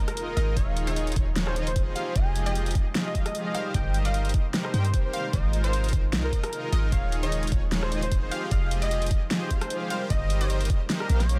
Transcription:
Already playing: C3 D#3 F3 G#3 D#4 F4 A#4 D#5, impact
0.08 A#4, cross-stick, closed hi-hat
0.17 closed hi-hat
0.28 A#4
0.37 G#1 G#3 D#4 F4 A#4 D#5, closed hi-hat
0.56 D#1 C#3 D#3 G#3 A#3 D#4 F4 G#4 C#5 F5, kick, closed hi-hat
0.77 closed hi-hat
0.87 D#3 D#4 F4 G#4 C#5 D#5, closed hi-hat
0.96 closed hi-hat
1.07 closed hi-hat
1.12 closed hi-hat
1.16 D#1 D#3 D#4 F4 G#4 C#5, kick, closed hi-hat
1.36 snare, closed hi-hat
1.47 C5, cross-stick
1.56 D#3 D#4 F4 G#4 D#5, closed hi-hat
1.67 C5, closed hi-hat
1.76 kick, closed hi-hat
1.87 C5
1.95 C3 D#3 F3 D#4 F4 G4 G#4 F5, closed hi-hat
2.15 F1 F3 F4 G4 G#4 D#5 G#5, kick, closed hi-hat
2.36 closed hi-hat
2.46 F3 F4 G4 G#4 D#5 G5, closed hi-hat
2.55 closed hi-hat
2.66 closed hi-hat
2.71 closed hi-hat
2.75 F3 F4 G4 G#4 D#5, kick, closed hi-hat
2.95 snare, closed hi-hat
3.06 D#5
3.15 F3 F4 G4 G#4 F5, kick, closed hi-hat
3.26 D#5, cross-stick, closed hi-hat
3.35 closed hi-hat
3.46 D#5
3.55 D#3 G3 A#3 D#4 G4 A#4 C5 F5, closed hi-hat
3.74 G1 G3 G4 A#4 C5 D#5 G5, kick, closed hi-hat
3.94 closed hi-hat
4.05 G3 G4 A#4 C5 D#5 F5, closed hi-hat
4.14 closed hi-hat
4.25 closed hi-hat
4.29 closed hi-hat
4.34 G3 G4 A#4 C5 D#5, kick, closed hi-hat
4.54 snare, closed hi-hat
4.65 C5, cross-stick
4.74 G2 G3 G4 A#4 C5 G5, closed hi-hat
4.84 C5, closed hi-hat
4.94 kick, closed hi-hat
5.05 C5
5.13 G3 G4 A#4 C5 F5, closed hi-hat
5.33 G#1 D#3 F3 G#3 D#4 F4 A#4 C5 D#5, kick, closed hi-hat
5.53 closed hi-hat
5.64 G#3 D#4 F4 A#4 C5, closed hi-hat
5.73 closed hi-hat
5.84 closed hi-hat
5.89 closed hi-hat
5.93 G#3 D#4 F4 A#4 C5, kick, closed hi-hat
6.13 C2, snare, closed hi-hat
6.24 A#4
6.33 G#3 D#4 F4 A#4 D#5, kick, closed hi-hat
6.44 A#4, cross-stick, closed hi-hat
6.53 closed hi-hat
6.64 A#4
6.72 G#1 G#3 D#4 F4 A#4 D#5, closed hi-hat
6.92 D#1 C#3 D#3 F3 A#3 D#4 F4 G#4 C#5 F5, kick, closed hi-hat
7.12 closed hi-hat
7.23 D#3 D#4 F4 G#4 C#5 D#5, closed hi-hat
7.32 closed hi-hat
7.43 closed hi-hat
7.47 closed hi-hat
7.52 D#1 D#3 D#4 F4 G#4 C#5, kick, closed hi-hat
7.72 snare, closed hi-hat
7.83 C5, cross-stick
7.92 D#3 D#4 F4 G#4 D#5, closed hi-hat
8.02 C5, closed hi-hat
8.12 kick, closed hi-hat
8.22 C5
8.31 C3 D#3 F3 F4 G4 G#4 F5, closed hi-hat
8.51 F1 F3 F4 G4 G#4 D#5 F5, kick, closed hi-hat
8.71 closed hi-hat
8.82 F3 F4 G4 G#4 D#5, closed hi-hat
8.91 closed hi-hat
9.02 closed hi-hat
9.06 closed hi-hat
9.11 F3 F4 G4 G#4 D#5, kick, closed hi-hat
9.31 snare, closed hi-hat
9.42 C5
9.51 F3 F4 G4 G#4 F5, kick, closed hi-hat
9.61 C5, cross-stick, closed hi-hat
9.70 closed hi-hat
9.81 C5
9.90 D#3 G3 A#3 G4 A#4 C5 F5, closed hi-hat
10.10 G1 G3 G4 A#4 C5 D#5, kick, closed hi-hat
10.30 closed hi-hat
10.41 G3 G4 A#4 C5 D#5, closed hi-hat
10.50 closed hi-hat
10.61 closed hi-hat
10.65 closed hi-hat
10.70 G3 G4 A#4 C5 D#5, kick, closed hi-hat
10.90 snare, closed hi-hat
11.00 A#4, cross-stick
11.09 A#1 G3 G4 A#4 C5 F5, closed hi-hat
11.20 C#5, snare, closed hi-hat
11.29 closed hi-hat

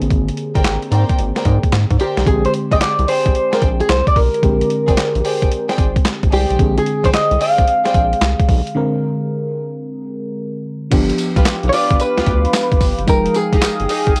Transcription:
Already playing: D3 A#3 C4 G#4
0.02 A1, closed hi-hat
0.10 G#1, kick, closed hi-hat
0.28 closed hi-hat
0.37 closed hi-hat
0.55 G1 A#4 C5 D5 G5, kick, closed hi-hat
0.64 G#1, snare, clap, closed hi-hat
0.82 closed hi-hat
0.91 G#2 A#4 C5 D5 G5, closed hi-hat
1.09 kick, closed hi-hat
1.19 G#1, closed hi-hat
1.36 A#4 C5 D5 G5, snare, closed hi-hat
1.45 G#2, kick, closed hi-hat
1.63 kick, closed hi-hat
1.72 G#2, snare, clap, closed hi-hat
1.90 G#2, kick, closed hi-hat
1.99 G4 A#4 C5 D5 G5, closed hi-hat
2.17 B1, snare, closed hi-hat
2.26 A#1 D3 G#3 C4 G4 G#4, kick, closed hi-hat
2.45 C5, closed hi-hat
2.54 closed hi-hat
2.71 A#1 G#4 C5 D5 D#5 G5, kick, closed hi-hat
2.81 D5, snare, clap, closed hi-hat
2.99 C2, closed hi-hat
3.07 G#4 C5 D5 G5, open hi-hat
3.26 A#1, kick, closed hi-hat
3.35 closed hi-hat
3.52 G#4 A#4 C5 D5 G5, snare, closed hi-hat
3.62 A#1, kick, closed hi-hat
3.80 G#4, closed hi-hat
3.89 C2 C5, snare, clap, closed hi-hat
4.07 D5, kick, closed hi-hat
4.16 B1 A#4, kick, open hi-hat
4.34 closed hi-hat
4.42 A#1 D3 G#3 C4 G4, kick, closed hi-hat
4.61 closed hi-hat
4.70 closed hi-hat
4.88 G#1 G#4 C5 D5 G5, kick, closed hi-hat
4.97 snare, clap, closed hi-hat
5.15 A#1, closed hi-hat
5.24 G#4 C5 D5 G5, open hi-hat
5.42 G1, kick, closed hi-hat
5.52 closed hi-hat
5.69 G#4 C5 D5 G5, snare, closed hi-hat
5.78 G#1, kick, closed hi-hat
5.96 kick, closed hi-hat
6.05 snare, clap, closed hi-hat
6.23 A#1, kick, closed hi-hat
6.32 C2 G4 G#4 C5 D5 G5, open hi-hat
6.50 B1, closed hi-hat
6.58 A#1 D3 G#3 C4 G#4, kick, closed hi-hat
6.78 G#4, closed hi-hat
6.86 closed hi-hat
7.04 A#1 G#4 C5 D5 G5, kick, closed hi-hat
7.13 D#5, snare, clap, closed hi-hat
7.31 C2, closed hi-hat
7.40 G#4 C5 D5 F5 G5, open hi-hat
7.58 A#1, kick, closed hi-hat
7.68 closed hi-hat
7.85 G#4 C5 D5 G5, snare, closed hi-hat
7.94 A#1, kick, closed hi-hat
8.13 closed hi-hat
8.21 C2, snare, clap, closed hi-hat
8.39 kick, closed hi-hat
8.49 B1, kick, open hi-hat
8.67 closed hi-hat
8.75 D3 G#3 C4 A#4
10.91 G1 F3 B3 D4 G4 B4 F5 G5 D6, kick, closed hi-hat, crash, tambourine
11.10 closed hi-hat
11.18 closed hi-hat, tambourine
11.36 B1 F4 G4 B4, kick, closed hi-hat
11.45 B1, snare, clap, closed hi-hat, tambourine
11.63 B1, closed hi-hat
11.69 F4 G4 B4 C#5, open hi-hat, tambourine
11.74 D5
11.90 G1, kick, closed hi-hat
12.00 B4, closed hi-hat, tambourine
12.17 D2 F4 G4 B4, snare, closed hi-hat
12.26 D2, kick, closed hi-hat
12.45 closed hi-hat
12.53 snare, clap, closed hi-hat, tambourine
12.72 G1, kick, closed hi-hat
12.81 G1, kick, open hi-hat, tambourine
12.99 F#1, closed hi-hat
13.06 F1 F3 G#3 D#4 G#4 A#4 F5 G5 D#6, kick, closed hi-hat, tambourine
13.26 closed hi-hat
13.34 G#4, closed hi-hat, tambourine
13.52 F1 D#4 G4 G#4, kick, closed hi-hat
13.61 G1, snare, clap, closed hi-hat, tambourine
13.80 G1, closed hi-hat
13.89 D#4 G4 G#4, open hi-hat, tambourine
14.07 G#1, kick, closed hi-hat
14.16 closed hi-hat, tambourine

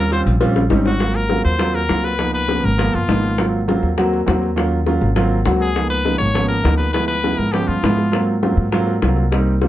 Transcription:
Already playing: D#2 A#4
0.11 G3 C4 C#4 F4 C5, cowbell
0.26 A#1, cowbell
0.40 G3 C4 C#4 F4, cowbell
0.56 high bongo
0.70 G#1 G3 C4 C#4 D#4, cowbell, low bongo
0.86 F#4, low bongo
1.00 F#3 A#3 C4 F4, high bongo
1.16 A#4
1.30 F#3 A#3 C4 F4, high bongo
1.44 D#2 C5, high bongo
1.59 F#3 A#3 C4 F4, high bongo
1.74 A#4, high bongo
1.89 C#2 F#3 A#3 C4 F4, high bongo, low bongo
2.04 B4, high bongo
2.19 F3 A#3 B3 D#4, high bongo
2.34 B4
2.48 F3 A#3 B3 C#4, high bongo
2.64 G#1 A#4, high bongo
2.78 F3 A#3 B3 F4, high bongo
2.94 G1 F4
3.08 G#1 F3 A#3 B3 D#4, high bongo, low bongo
3.24 high bongo
3.38 F#3 A#3 C4 F4, high bongo
3.68 F#3 A#3 C4 F4, high bongo
3.83 D#2, high bongo
3.97 F#3 A#3 C4 F#4, high bongo
4.13 high bongo
4.26 D#2 F#3 A#3 C4 F#4, high bongo, low bongo
4.43 high bongo
4.56 F#3 A#3 C#4 F4, high bongo
4.86 F#3 A#3 C#4 F4, high bongo
5.01 G#1, high bongo
5.16 F#3 A#3 C4 F4, high bongo
5.46 C#2 F#3 A#3 C4 F#4, high bongo, low bongo
5.61 G#4, high bongo
5.75 F3 A#3 B3 D#4, high bongo
5.90 B4
6.05 F3 A#3 B3 D#4, high bongo
6.18 G#1 C#5, high bongo
6.34 F3 A#3 B3 C#4, high bongo
6.48 A#4, high bongo
6.63 D2 F3 A#3 B3 D#4, high bongo, low bongo
6.78 B4, high bongo
6.93 F3 G#3 B3 E4 B4, high bongo
7.08 B4
7.24 F3 G#3 B3 E4, high bongo
7.38 G#2 A#4, high bongo
7.52 F3 G#3 B3 C#4 G4, high bongo
7.68 G2 F4
7.83 G#2 F3 G#3 B3 E4, high bongo, low bongo
7.98 high bongo
8.12 F#3 A#3 C4 F4, high bongo
8.42 F#3 A#3 C4 F4, high bongo
8.57 G#2, high bongo
8.72 F#3 A#3 C4 F4, high bongo
8.87 high bongo
9.02 C2 F#3 A#3 C4 F4, high bongo, low bongo
9.17 high bongo
9.32 G3 A#3 C4 D#4, high bongo
9.62 G3 A#3 C4 F4, high bongo

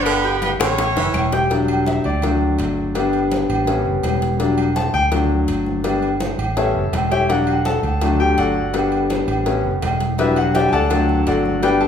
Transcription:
Already playing: G1 D4 D5 D6
0.02 D3 B3 B4, low agogo, claves
0.06 cowbell, high conga
0.24 G4 G5 G6, high conga, low agogo
0.42 B3 B4, cowbell, high conga, low agogo
0.59 A1 D3 C#4 C#5 C#6, high bongo, high conga, low agogo, claves
0.78 cowbell, high bongo, high conga, low agogo
0.96 F#1 E3 E4 E5 E6, low bongo, high conga
1.14 E1, cowbell, high conga, low agogo, claves
1.32 G4 G5 G6, cowbell, low bongo, high conga
1.50 F#3 G3 D4, cowbell, high conga, low agogo
1.68 high conga, low agogo
1.86 E5, cowbell, high conga
2.04 D2 D5, high conga, low agogo
2.22 F#3 A3 D4, cowbell, high conga, low conga, low agogo
2.41 high conga
2.59 G1, cowbell, high conga, low timbale, low agogo
2.95 G3 B3 D4, cowbell, high conga, low agogo
3.13 high conga, low agogo
3.31 cowbell, high conga, low agogo
3.49 A1, high conga, low agogo
3.67 G3 B3 C#4, cowbell, high conga, low agogo
3.85 F#1, high conga
4.03 E1, cowbell, high conga, low agogo
4.22 cowbell
4.39 F#3 G3 D4, cowbell, high conga, low agogo
4.58 high conga, low agogo
4.76 A5, cowbell, high conga
4.94 D2 G5, high conga, low agogo
5.11 F#3 A3 D4, cowbell, high conga, low conga, low agogo
5.30 high conga
5.48 G1, cowbell, high conga, low agogo
5.66 high conga
5.84 G3 B3 D4, cowbell, high conga, low agogo
6.02 high conga, low agogo
6.20 cowbell, high conga, low agogo
6.39 A1, high conga, low agogo
6.56 G3 B3 C#4 A4 C#5 E5 A5, cowbell, high conga, low agogo
6.75 F#1, high conga
6.93 E1, cowbell, high conga, low timbale, low agogo
7.11 G4 C#5 E5 G5, cowbell, high conga
7.29 F#3 G3 D4 F#4 F#5, cowbell, high conga, low agogo
7.47 high conga, low agogo
7.65 A4 A5, cowbell, high conga
7.83 D2, high conga, low agogo
8.01 F#3 A3 D4, cowbell, high conga, low conga, low agogo
8.19 G4 G5, high conga
8.37 G1 F#4 A4 D5 F#5, cowbell, high conga, low agogo
8.74 G3 B3 D4, cowbell, high conga, low agogo
8.92 high conga, low agogo
9.10 cowbell, high conga, low agogo
9.28 A1, high conga, low agogo
9.46 G3 B3 C#4, cowbell, high conga, low agogo
9.64 F#1, high conga
9.82 E1, cowbell, high conga, low timbale, low agogo
10.00 cowbell, high conga
10.18 F#3 G3 D4 E4 G4 B4 E5, cowbell, high conga, low agogo
10.36 F#4 F#5, high conga, low agogo
10.55 G4 D5 E5 G5, cowbell, high conga
10.68 G#5
10.72 D2 A4 D5 F#5 A5, high conga, low agogo
10.90 F#3 A3 D4, cowbell, high conga, low conga, low agogo
11.09 high conga, low conga
11.27 G1 F#4 A4 D5 F#5, cowbell, high conga, low timbale, low agogo
11.46 high conga
11.62 G3 B3 D4 G4 B4 D5 G5, cowbell, high conga, low agogo
11.81 A4 A5, high conga, low agogo

